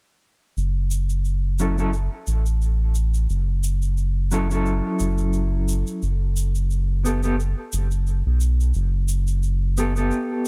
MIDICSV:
0, 0, Header, 1, 4, 480
1, 0, Start_track
1, 0, Tempo, 681818
1, 402, Time_signature, 4, 2, 24, 8
1, 7377, End_track
2, 0, Start_track
2, 0, Title_t, "Clean electric guitar"
2, 0, Program_c, 0, 27
2, 1124, Note_on_c, 0, 54, 64
2, 1127, Note_on_c, 0, 61, 64
2, 1131, Note_on_c, 0, 64, 58
2, 1136, Note_on_c, 0, 69, 69
2, 1235, Note_off_c, 0, 54, 0
2, 1237, Note_off_c, 0, 61, 0
2, 1239, Note_off_c, 0, 64, 0
2, 1241, Note_off_c, 0, 69, 0
2, 1254, Note_on_c, 0, 54, 73
2, 1258, Note_on_c, 0, 61, 69
2, 1263, Note_on_c, 0, 64, 70
2, 1268, Note_on_c, 0, 69, 85
2, 1330, Note_off_c, 0, 54, 0
2, 1332, Note_off_c, 0, 61, 0
2, 1334, Note_off_c, 0, 64, 0
2, 1337, Note_off_c, 0, 69, 0
2, 3037, Note_on_c, 0, 54, 72
2, 3044, Note_on_c, 0, 61, 66
2, 3048, Note_on_c, 0, 64, 70
2, 3052, Note_on_c, 0, 69, 85
2, 3140, Note_off_c, 0, 54, 0
2, 3143, Note_off_c, 0, 61, 0
2, 3145, Note_off_c, 0, 64, 0
2, 3148, Note_off_c, 0, 69, 0
2, 3164, Note_on_c, 0, 54, 70
2, 3174, Note_on_c, 0, 61, 67
2, 3183, Note_on_c, 0, 64, 66
2, 3192, Note_on_c, 0, 69, 80
2, 4224, Note_off_c, 0, 54, 0
2, 4229, Note_off_c, 0, 61, 0
2, 4233, Note_off_c, 0, 64, 0
2, 4238, Note_off_c, 0, 69, 0
2, 4960, Note_on_c, 0, 59, 72
2, 4966, Note_on_c, 0, 67, 61
2, 4972, Note_on_c, 0, 69, 77
2, 5073, Note_off_c, 0, 59, 0
2, 5076, Note_off_c, 0, 67, 0
2, 5080, Note_off_c, 0, 69, 0
2, 5094, Note_on_c, 0, 59, 80
2, 5099, Note_on_c, 0, 67, 77
2, 5106, Note_on_c, 0, 69, 95
2, 5170, Note_off_c, 0, 59, 0
2, 5172, Note_off_c, 0, 67, 0
2, 5176, Note_off_c, 0, 69, 0
2, 6883, Note_on_c, 0, 59, 81
2, 6888, Note_on_c, 0, 67, 72
2, 6896, Note_on_c, 0, 69, 88
2, 6983, Note_off_c, 0, 59, 0
2, 6986, Note_off_c, 0, 67, 0
2, 6990, Note_off_c, 0, 69, 0
2, 7013, Note_on_c, 0, 59, 77
2, 7021, Note_on_c, 0, 67, 71
2, 7027, Note_on_c, 0, 69, 88
2, 7377, Note_off_c, 0, 59, 0
2, 7377, Note_off_c, 0, 67, 0
2, 7377, Note_off_c, 0, 69, 0
2, 7377, End_track
3, 0, Start_track
3, 0, Title_t, "Analog synth bass"
3, 0, Program_c, 1, 38
3, 401, Note_on_c, 1, 30, 86
3, 1468, Note_off_c, 1, 30, 0
3, 1600, Note_on_c, 1, 33, 84
3, 2300, Note_off_c, 1, 33, 0
3, 2319, Note_on_c, 1, 30, 92
3, 3388, Note_off_c, 1, 30, 0
3, 3521, Note_on_c, 1, 30, 91
3, 4108, Note_off_c, 1, 30, 0
3, 4242, Note_on_c, 1, 30, 95
3, 5309, Note_off_c, 1, 30, 0
3, 5443, Note_on_c, 1, 30, 84
3, 5790, Note_off_c, 1, 30, 0
3, 5816, Note_on_c, 1, 35, 83
3, 6142, Note_off_c, 1, 35, 0
3, 6162, Note_on_c, 1, 30, 97
3, 7122, Note_off_c, 1, 30, 0
3, 7377, End_track
4, 0, Start_track
4, 0, Title_t, "Drums"
4, 405, Note_on_c, 9, 82, 35
4, 476, Note_off_c, 9, 82, 0
4, 639, Note_on_c, 9, 82, 79
4, 709, Note_off_c, 9, 82, 0
4, 772, Note_on_c, 9, 82, 44
4, 842, Note_off_c, 9, 82, 0
4, 878, Note_on_c, 9, 82, 33
4, 949, Note_off_c, 9, 82, 0
4, 1118, Note_on_c, 9, 82, 69
4, 1188, Note_off_c, 9, 82, 0
4, 1254, Note_on_c, 9, 82, 40
4, 1325, Note_off_c, 9, 82, 0
4, 1360, Note_on_c, 9, 82, 30
4, 1430, Note_off_c, 9, 82, 0
4, 1598, Note_on_c, 9, 82, 75
4, 1668, Note_off_c, 9, 82, 0
4, 1731, Note_on_c, 9, 82, 42
4, 1801, Note_off_c, 9, 82, 0
4, 1842, Note_on_c, 9, 82, 33
4, 1913, Note_off_c, 9, 82, 0
4, 2075, Note_on_c, 9, 82, 71
4, 2145, Note_off_c, 9, 82, 0
4, 2211, Note_on_c, 9, 82, 38
4, 2282, Note_off_c, 9, 82, 0
4, 2321, Note_on_c, 9, 82, 35
4, 2391, Note_off_c, 9, 82, 0
4, 2559, Note_on_c, 9, 82, 91
4, 2629, Note_off_c, 9, 82, 0
4, 2690, Note_on_c, 9, 82, 50
4, 2761, Note_off_c, 9, 82, 0
4, 2797, Note_on_c, 9, 82, 38
4, 2868, Note_off_c, 9, 82, 0
4, 3035, Note_on_c, 9, 82, 79
4, 3106, Note_off_c, 9, 82, 0
4, 3172, Note_on_c, 9, 82, 44
4, 3243, Note_off_c, 9, 82, 0
4, 3279, Note_on_c, 9, 82, 34
4, 3349, Note_off_c, 9, 82, 0
4, 3515, Note_on_c, 9, 82, 80
4, 3585, Note_off_c, 9, 82, 0
4, 3646, Note_on_c, 9, 82, 44
4, 3717, Note_off_c, 9, 82, 0
4, 3753, Note_on_c, 9, 82, 36
4, 3823, Note_off_c, 9, 82, 0
4, 4001, Note_on_c, 9, 82, 89
4, 4071, Note_off_c, 9, 82, 0
4, 4131, Note_on_c, 9, 82, 47
4, 4202, Note_off_c, 9, 82, 0
4, 4241, Note_on_c, 9, 82, 37
4, 4311, Note_off_c, 9, 82, 0
4, 4480, Note_on_c, 9, 82, 88
4, 4550, Note_off_c, 9, 82, 0
4, 4612, Note_on_c, 9, 82, 46
4, 4683, Note_off_c, 9, 82, 0
4, 4720, Note_on_c, 9, 82, 37
4, 4791, Note_off_c, 9, 82, 0
4, 4966, Note_on_c, 9, 82, 88
4, 5036, Note_off_c, 9, 82, 0
4, 5089, Note_on_c, 9, 82, 48
4, 5159, Note_off_c, 9, 82, 0
4, 5209, Note_on_c, 9, 82, 40
4, 5279, Note_off_c, 9, 82, 0
4, 5438, Note_on_c, 9, 82, 88
4, 5509, Note_off_c, 9, 82, 0
4, 5570, Note_on_c, 9, 82, 50
4, 5640, Note_off_c, 9, 82, 0
4, 5680, Note_on_c, 9, 82, 34
4, 5751, Note_off_c, 9, 82, 0
4, 5916, Note_on_c, 9, 82, 75
4, 5987, Note_off_c, 9, 82, 0
4, 6058, Note_on_c, 9, 82, 46
4, 6128, Note_off_c, 9, 82, 0
4, 6151, Note_on_c, 9, 82, 35
4, 6222, Note_off_c, 9, 82, 0
4, 6394, Note_on_c, 9, 82, 97
4, 6464, Note_off_c, 9, 82, 0
4, 6528, Note_on_c, 9, 82, 43
4, 6598, Note_off_c, 9, 82, 0
4, 6638, Note_on_c, 9, 82, 42
4, 6709, Note_off_c, 9, 82, 0
4, 6880, Note_on_c, 9, 82, 87
4, 6951, Note_off_c, 9, 82, 0
4, 7013, Note_on_c, 9, 82, 50
4, 7084, Note_off_c, 9, 82, 0
4, 7118, Note_on_c, 9, 82, 40
4, 7188, Note_off_c, 9, 82, 0
4, 7377, End_track
0, 0, End_of_file